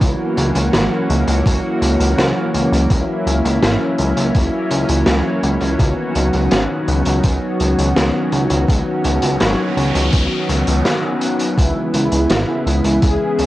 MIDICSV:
0, 0, Header, 1, 6, 480
1, 0, Start_track
1, 0, Tempo, 722892
1, 7, Time_signature, 4, 2, 24, 8
1, 8937, End_track
2, 0, Start_track
2, 0, Title_t, "Analog polysynth"
2, 0, Program_c, 0, 90
2, 7690, Note_on_c, 0, 64, 99
2, 8622, Note_off_c, 0, 64, 0
2, 8649, Note_on_c, 0, 68, 120
2, 8937, Note_off_c, 0, 68, 0
2, 8937, End_track
3, 0, Start_track
3, 0, Title_t, "Analog synth pad"
3, 0, Program_c, 1, 89
3, 0, Note_on_c, 1, 52, 75
3, 9, Note_on_c, 1, 58, 74
3, 9, Note_on_c, 1, 61, 75
3, 10, Note_on_c, 1, 54, 75
3, 10, Note_on_c, 1, 66, 89
3, 1909, Note_off_c, 1, 66, 0
3, 1928, Note_on_c, 1, 64, 88
3, 3821, Note_off_c, 1, 52, 0
3, 3822, Note_off_c, 1, 58, 0
3, 3829, Note_off_c, 1, 64, 0
3, 3848, Note_on_c, 1, 59, 71
3, 3848, Note_on_c, 1, 66, 83
3, 3849, Note_on_c, 1, 51, 78
3, 7661, Note_off_c, 1, 66, 0
3, 7662, Note_off_c, 1, 51, 0
3, 7662, Note_off_c, 1, 54, 0
3, 7662, Note_off_c, 1, 61, 0
3, 7690, Note_on_c, 1, 49, 81
3, 7690, Note_on_c, 1, 52, 74
3, 7690, Note_on_c, 1, 56, 72
3, 7690, Note_on_c, 1, 64, 87
3, 8937, Note_off_c, 1, 49, 0
3, 8937, Note_off_c, 1, 52, 0
3, 8937, Note_off_c, 1, 56, 0
3, 8937, Note_off_c, 1, 59, 0
3, 8937, Note_off_c, 1, 64, 0
3, 8937, End_track
4, 0, Start_track
4, 0, Title_t, "Analog synth bass"
4, 0, Program_c, 2, 38
4, 7, Note_on_c, 2, 37, 100
4, 105, Note_off_c, 2, 37, 0
4, 247, Note_on_c, 2, 37, 85
4, 345, Note_off_c, 2, 37, 0
4, 368, Note_on_c, 2, 37, 83
4, 465, Note_off_c, 2, 37, 0
4, 489, Note_on_c, 2, 32, 106
4, 586, Note_off_c, 2, 32, 0
4, 727, Note_on_c, 2, 37, 90
4, 825, Note_off_c, 2, 37, 0
4, 847, Note_on_c, 2, 37, 87
4, 945, Note_off_c, 2, 37, 0
4, 968, Note_on_c, 2, 37, 98
4, 1065, Note_off_c, 2, 37, 0
4, 1206, Note_on_c, 2, 37, 90
4, 1304, Note_off_c, 2, 37, 0
4, 1325, Note_on_c, 2, 37, 85
4, 1424, Note_off_c, 2, 37, 0
4, 1446, Note_on_c, 2, 37, 93
4, 1544, Note_off_c, 2, 37, 0
4, 1686, Note_on_c, 2, 37, 93
4, 1785, Note_off_c, 2, 37, 0
4, 1806, Note_on_c, 2, 37, 81
4, 1905, Note_off_c, 2, 37, 0
4, 1928, Note_on_c, 2, 37, 98
4, 2025, Note_off_c, 2, 37, 0
4, 2168, Note_on_c, 2, 37, 87
4, 2265, Note_off_c, 2, 37, 0
4, 2289, Note_on_c, 2, 37, 87
4, 2386, Note_off_c, 2, 37, 0
4, 2407, Note_on_c, 2, 32, 107
4, 2505, Note_off_c, 2, 32, 0
4, 2646, Note_on_c, 2, 37, 89
4, 2745, Note_off_c, 2, 37, 0
4, 2767, Note_on_c, 2, 37, 86
4, 2865, Note_off_c, 2, 37, 0
4, 2887, Note_on_c, 2, 37, 99
4, 2985, Note_off_c, 2, 37, 0
4, 3127, Note_on_c, 2, 37, 91
4, 3225, Note_off_c, 2, 37, 0
4, 3248, Note_on_c, 2, 37, 80
4, 3345, Note_off_c, 2, 37, 0
4, 3367, Note_on_c, 2, 37, 99
4, 3465, Note_off_c, 2, 37, 0
4, 3606, Note_on_c, 2, 37, 94
4, 3705, Note_off_c, 2, 37, 0
4, 3728, Note_on_c, 2, 37, 78
4, 3825, Note_off_c, 2, 37, 0
4, 3846, Note_on_c, 2, 37, 99
4, 3945, Note_off_c, 2, 37, 0
4, 4088, Note_on_c, 2, 37, 89
4, 4185, Note_off_c, 2, 37, 0
4, 4208, Note_on_c, 2, 37, 81
4, 4305, Note_off_c, 2, 37, 0
4, 4328, Note_on_c, 2, 32, 103
4, 4426, Note_off_c, 2, 32, 0
4, 4568, Note_on_c, 2, 37, 98
4, 4665, Note_off_c, 2, 37, 0
4, 4688, Note_on_c, 2, 37, 84
4, 4785, Note_off_c, 2, 37, 0
4, 4807, Note_on_c, 2, 37, 95
4, 4905, Note_off_c, 2, 37, 0
4, 5048, Note_on_c, 2, 37, 91
4, 5145, Note_off_c, 2, 37, 0
4, 5168, Note_on_c, 2, 37, 84
4, 5266, Note_off_c, 2, 37, 0
4, 5287, Note_on_c, 2, 37, 97
4, 5385, Note_off_c, 2, 37, 0
4, 5527, Note_on_c, 2, 37, 89
4, 5625, Note_off_c, 2, 37, 0
4, 5646, Note_on_c, 2, 37, 82
4, 5744, Note_off_c, 2, 37, 0
4, 5767, Note_on_c, 2, 37, 98
4, 5865, Note_off_c, 2, 37, 0
4, 6007, Note_on_c, 2, 37, 90
4, 6105, Note_off_c, 2, 37, 0
4, 6127, Note_on_c, 2, 37, 81
4, 6225, Note_off_c, 2, 37, 0
4, 6247, Note_on_c, 2, 32, 107
4, 6345, Note_off_c, 2, 32, 0
4, 6486, Note_on_c, 2, 37, 93
4, 6585, Note_off_c, 2, 37, 0
4, 6607, Note_on_c, 2, 37, 81
4, 6705, Note_off_c, 2, 37, 0
4, 6727, Note_on_c, 2, 37, 97
4, 6825, Note_off_c, 2, 37, 0
4, 6966, Note_on_c, 2, 37, 90
4, 7064, Note_off_c, 2, 37, 0
4, 7087, Note_on_c, 2, 37, 82
4, 7185, Note_off_c, 2, 37, 0
4, 7687, Note_on_c, 2, 37, 97
4, 7785, Note_off_c, 2, 37, 0
4, 7928, Note_on_c, 2, 37, 91
4, 8025, Note_off_c, 2, 37, 0
4, 8046, Note_on_c, 2, 37, 87
4, 8144, Note_off_c, 2, 37, 0
4, 8166, Note_on_c, 2, 32, 108
4, 8265, Note_off_c, 2, 32, 0
4, 8408, Note_on_c, 2, 37, 89
4, 8505, Note_off_c, 2, 37, 0
4, 8527, Note_on_c, 2, 37, 83
4, 8625, Note_off_c, 2, 37, 0
4, 8648, Note_on_c, 2, 37, 101
4, 8745, Note_off_c, 2, 37, 0
4, 8888, Note_on_c, 2, 37, 89
4, 8937, Note_off_c, 2, 37, 0
4, 8937, End_track
5, 0, Start_track
5, 0, Title_t, "Noise sweep"
5, 0, Program_c, 3, 103
5, 5767, Note_on_c, 3, 60, 59
5, 7687, Note_off_c, 3, 60, 0
5, 8937, End_track
6, 0, Start_track
6, 0, Title_t, "Drums"
6, 8, Note_on_c, 9, 36, 116
6, 9, Note_on_c, 9, 42, 102
6, 74, Note_off_c, 9, 36, 0
6, 75, Note_off_c, 9, 42, 0
6, 248, Note_on_c, 9, 42, 70
6, 314, Note_off_c, 9, 42, 0
6, 366, Note_on_c, 9, 42, 76
6, 432, Note_off_c, 9, 42, 0
6, 487, Note_on_c, 9, 38, 115
6, 489, Note_on_c, 9, 42, 98
6, 553, Note_off_c, 9, 38, 0
6, 556, Note_off_c, 9, 42, 0
6, 730, Note_on_c, 9, 42, 68
6, 796, Note_off_c, 9, 42, 0
6, 847, Note_on_c, 9, 42, 83
6, 913, Note_off_c, 9, 42, 0
6, 968, Note_on_c, 9, 36, 115
6, 971, Note_on_c, 9, 42, 96
6, 1034, Note_off_c, 9, 36, 0
6, 1037, Note_off_c, 9, 42, 0
6, 1208, Note_on_c, 9, 42, 80
6, 1274, Note_off_c, 9, 42, 0
6, 1330, Note_on_c, 9, 42, 68
6, 1396, Note_off_c, 9, 42, 0
6, 1450, Note_on_c, 9, 42, 95
6, 1451, Note_on_c, 9, 38, 117
6, 1517, Note_off_c, 9, 42, 0
6, 1518, Note_off_c, 9, 38, 0
6, 1689, Note_on_c, 9, 42, 80
6, 1755, Note_off_c, 9, 42, 0
6, 1814, Note_on_c, 9, 42, 75
6, 1880, Note_off_c, 9, 42, 0
6, 1927, Note_on_c, 9, 36, 112
6, 1927, Note_on_c, 9, 42, 100
6, 1993, Note_off_c, 9, 42, 0
6, 1994, Note_off_c, 9, 36, 0
6, 2171, Note_on_c, 9, 42, 66
6, 2237, Note_off_c, 9, 42, 0
6, 2293, Note_on_c, 9, 42, 82
6, 2360, Note_off_c, 9, 42, 0
6, 2408, Note_on_c, 9, 38, 111
6, 2412, Note_on_c, 9, 42, 93
6, 2474, Note_off_c, 9, 38, 0
6, 2478, Note_off_c, 9, 42, 0
6, 2645, Note_on_c, 9, 42, 68
6, 2711, Note_off_c, 9, 42, 0
6, 2768, Note_on_c, 9, 42, 72
6, 2834, Note_off_c, 9, 42, 0
6, 2886, Note_on_c, 9, 42, 93
6, 2887, Note_on_c, 9, 36, 114
6, 2952, Note_off_c, 9, 42, 0
6, 2954, Note_off_c, 9, 36, 0
6, 3125, Note_on_c, 9, 42, 76
6, 3192, Note_off_c, 9, 42, 0
6, 3245, Note_on_c, 9, 42, 67
6, 3312, Note_off_c, 9, 42, 0
6, 3361, Note_on_c, 9, 38, 119
6, 3365, Note_on_c, 9, 42, 92
6, 3427, Note_off_c, 9, 38, 0
6, 3432, Note_off_c, 9, 42, 0
6, 3607, Note_on_c, 9, 42, 74
6, 3673, Note_off_c, 9, 42, 0
6, 3723, Note_on_c, 9, 42, 75
6, 3789, Note_off_c, 9, 42, 0
6, 3847, Note_on_c, 9, 36, 108
6, 3848, Note_on_c, 9, 42, 95
6, 3913, Note_off_c, 9, 36, 0
6, 3914, Note_off_c, 9, 42, 0
6, 4085, Note_on_c, 9, 42, 77
6, 4152, Note_off_c, 9, 42, 0
6, 4204, Note_on_c, 9, 42, 72
6, 4270, Note_off_c, 9, 42, 0
6, 4323, Note_on_c, 9, 42, 97
6, 4328, Note_on_c, 9, 38, 114
6, 4390, Note_off_c, 9, 42, 0
6, 4394, Note_off_c, 9, 38, 0
6, 4567, Note_on_c, 9, 42, 65
6, 4634, Note_off_c, 9, 42, 0
6, 4684, Note_on_c, 9, 42, 77
6, 4750, Note_off_c, 9, 42, 0
6, 4804, Note_on_c, 9, 42, 100
6, 4807, Note_on_c, 9, 36, 111
6, 4871, Note_off_c, 9, 42, 0
6, 4873, Note_off_c, 9, 36, 0
6, 5045, Note_on_c, 9, 42, 77
6, 5112, Note_off_c, 9, 42, 0
6, 5170, Note_on_c, 9, 42, 66
6, 5236, Note_off_c, 9, 42, 0
6, 5288, Note_on_c, 9, 38, 106
6, 5290, Note_on_c, 9, 42, 99
6, 5354, Note_off_c, 9, 38, 0
6, 5356, Note_off_c, 9, 42, 0
6, 5526, Note_on_c, 9, 42, 72
6, 5593, Note_off_c, 9, 42, 0
6, 5645, Note_on_c, 9, 42, 79
6, 5711, Note_off_c, 9, 42, 0
6, 5767, Note_on_c, 9, 36, 108
6, 5773, Note_on_c, 9, 42, 108
6, 5833, Note_off_c, 9, 36, 0
6, 5840, Note_off_c, 9, 42, 0
6, 6005, Note_on_c, 9, 42, 74
6, 6071, Note_off_c, 9, 42, 0
6, 6123, Note_on_c, 9, 42, 80
6, 6189, Note_off_c, 9, 42, 0
6, 6243, Note_on_c, 9, 42, 94
6, 6247, Note_on_c, 9, 38, 124
6, 6310, Note_off_c, 9, 42, 0
6, 6313, Note_off_c, 9, 38, 0
6, 6490, Note_on_c, 9, 42, 71
6, 6556, Note_off_c, 9, 42, 0
6, 6608, Note_on_c, 9, 42, 81
6, 6675, Note_off_c, 9, 42, 0
6, 6723, Note_on_c, 9, 42, 93
6, 6727, Note_on_c, 9, 36, 111
6, 6789, Note_off_c, 9, 42, 0
6, 6793, Note_off_c, 9, 36, 0
6, 6967, Note_on_c, 9, 42, 80
6, 7034, Note_off_c, 9, 42, 0
6, 7086, Note_on_c, 9, 42, 68
6, 7152, Note_off_c, 9, 42, 0
6, 7206, Note_on_c, 9, 38, 116
6, 7207, Note_on_c, 9, 42, 102
6, 7272, Note_off_c, 9, 38, 0
6, 7274, Note_off_c, 9, 42, 0
6, 7445, Note_on_c, 9, 42, 81
6, 7512, Note_off_c, 9, 42, 0
6, 7565, Note_on_c, 9, 42, 75
6, 7632, Note_off_c, 9, 42, 0
6, 7687, Note_on_c, 9, 36, 112
6, 7692, Note_on_c, 9, 42, 107
6, 7754, Note_off_c, 9, 36, 0
6, 7758, Note_off_c, 9, 42, 0
6, 7927, Note_on_c, 9, 42, 77
6, 7994, Note_off_c, 9, 42, 0
6, 8046, Note_on_c, 9, 42, 70
6, 8113, Note_off_c, 9, 42, 0
6, 8165, Note_on_c, 9, 42, 105
6, 8171, Note_on_c, 9, 38, 123
6, 8231, Note_off_c, 9, 42, 0
6, 8237, Note_off_c, 9, 38, 0
6, 8412, Note_on_c, 9, 42, 78
6, 8478, Note_off_c, 9, 42, 0
6, 8527, Note_on_c, 9, 42, 78
6, 8593, Note_off_c, 9, 42, 0
6, 8647, Note_on_c, 9, 42, 108
6, 8648, Note_on_c, 9, 36, 115
6, 8713, Note_off_c, 9, 42, 0
6, 8714, Note_off_c, 9, 36, 0
6, 8888, Note_on_c, 9, 42, 74
6, 8937, Note_off_c, 9, 42, 0
6, 8937, End_track
0, 0, End_of_file